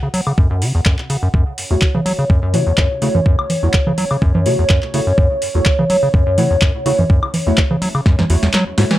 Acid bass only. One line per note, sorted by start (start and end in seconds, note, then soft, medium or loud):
0.03 0.09 C#3 medium
0.14 0.21 F#3 loud
0.27 0.33 C#3 medium
0.38 0.49 F#2 loud
0.51 0.63 F#2 medium
0.62 0.73 C#3 loud
0.75 0.81 E2 medium
0.86 0.97 F#2 medium
1.10 1.17 C#3 medium
1.23 1.29 F#2 medium
1.34 1.45 F#2 loud
1.71 1.77 E2 medium
1.95 2.01 C#3 medium
2.06 2.13 F#3 loud
2.19 2.25 C#3 medium
2.30 2.41 F#2 loud
2.43 2.55 F#2 medium
2.54 2.65 C#3 loud
2.67 2.73 E2 medium
2.78 2.89 F#2 medium
3.02 3.09 C#3 medium
3.15 3.21 F#2 medium
3.26 3.37 F#2 loud
3.63 3.69 E2 medium
3.87 3.93 C#3 medium
3.98 4.05 F#3 loud
4.11 4.17 C#3 medium
4.22 4.33 F#2 loud
4.35 4.47 F#2 medium
4.46 4.57 C#3 loud
4.59 4.65 E2 medium
4.70 4.81 F#2 medium
4.94 5.01 C#3 medium
5.07 5.13 F#2 medium
5.18 5.29 F#2 loud
5.55 5.61 E2 medium
5.79 5.85 C#3 medium
5.90 5.97 F#3 loud
6.03 6.09 C#3 medium
6.14 6.24 F#2 loud
6.27 6.39 F#2 medium
6.38 6.48 C#3 loud
6.51 6.57 E2 medium
6.62 6.72 F#2 medium
6.86 6.93 C#3 medium
6.99 7.05 F#2 medium
7.10 7.21 F#2 loud
7.47 7.53 E2 medium
7.71 7.77 C#3 medium
7.82 7.89 F#3 loud
7.95 8.01 C#3 medium
8.06 8.16 F#2 loud
8.19 8.25 F#2 medium
8.30 8.37 E2 loud
8.43 8.49 E2 medium
8.54 8.64 F#3 loud
8.78 8.85 G#2 loud
8.91 8.97 E3 medium